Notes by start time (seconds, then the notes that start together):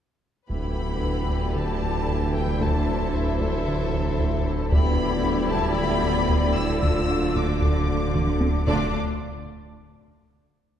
0.50 D1 D2 D3 E3 B3 E4 G4 B4 B5, taiko
0.77 D2
1.03 D2
1.29 D2
1.55 D3 A3 A5
1.83 D2
2.08 D2
2.34 D2 G3 G5
2.60 D2 A3 A4 C5 A5, taiko
2.88 D2
3.14 D2 E3 E5
3.40 D2 E3 E5, taiko
3.67 D3
3.94 D2
4.19 D2, taiko
4.46 D2
4.71 D2 D3 G3 B3 E4 G4 D5 B5, taiko
4.98 D2
5.24 D2
5.51 D2 A3 A5, taiko
5.76 D3 B3 B5
6.04 D2
6.30 D2, taiko
6.56 D2 E4 E6
6.82 D1 D2 A3 D4 F4 E6, taiko
7.10 D2
7.35 D2 D4 D6, taiko low-mid
7.62 D2, taiko
7.88 D3
8.15 D2, taiko mid
8.41 D2, taiko high
8.66 D1 D2 D3 A3 D4 F4 D5 D6, taiko